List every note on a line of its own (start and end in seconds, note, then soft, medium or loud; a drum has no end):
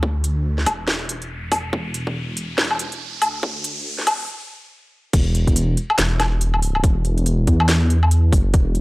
0.00 0.65 D2 medium
0.00 kick loud
0.00 riser medium
0.24 closed hi-hat medium
0.58 snare soft
0.66 1.72 E1 loud
0.66 kick medium
0.66 closed hi-hat medium
0.66 low woodblock medium
0.88 snare loud
1.09 closed hi-hat medium
1.22 closed hi-hat soft
1.52 kick loud
1.52 open hi-hat medium
1.52 low woodblock medium
1.73 2.57 E1 loud
1.73 kick loud
1.94 closed hi-hat medium
2.07 kick medium
2.37 closed hi-hat medium
2.58 3.21 E1 loud
2.58 snare loud
2.71 low woodblock medium
2.79 closed hi-hat medium
2.92 closed hi-hat soft
3.22 4.06 D2 loud
3.22 open hi-hat medium
3.22 low woodblock medium
3.43 kick loud
3.64 closed hi-hat medium
3.98 snare soft
4.07 4.28 E1 medium
4.07 kick medium
4.07 closed hi-hat medium
4.07 low woodblock medium
5.13 5.76 E1 loud
5.13 kick loud
5.13 closed hi-hat medium
5.13 crash loud
5.35 closed hi-hat medium
5.47 kick medium
5.47 closed hi-hat soft
5.56 closed hi-hat medium
5.77 closed hi-hat medium
5.90 low woodblock medium
5.98 6.82 E1 loud
5.98 snare loud
5.98 clap medium
5.98 closed hi-hat medium
6.20 snare medium
6.20 closed hi-hat medium
6.20 low woodblock medium
6.41 closed hi-hat medium
6.54 low woodblock medium
6.62 open hi-hat medium
6.75 low woodblock medium
6.84 7.46 E1 loud
6.84 kick loud
6.84 closed hi-hat medium
7.05 closed hi-hat medium
7.18 closed hi-hat soft
7.26 closed hi-hat medium
7.47 8.31 E2 loud
7.47 kick medium
7.47 closed hi-hat medium
7.60 low woodblock medium
7.69 snare loud
7.69 clap medium
7.69 closed hi-hat medium
7.90 closed hi-hat medium
8.03 low woodblock medium
8.11 closed hi-hat medium
8.32 8.52 F#1 loud
8.32 kick loud
8.32 open hi-hat medium
8.54 8.81 E1 loud
8.54 kick loud
8.54 closed hi-hat medium
8.75 closed hi-hat soft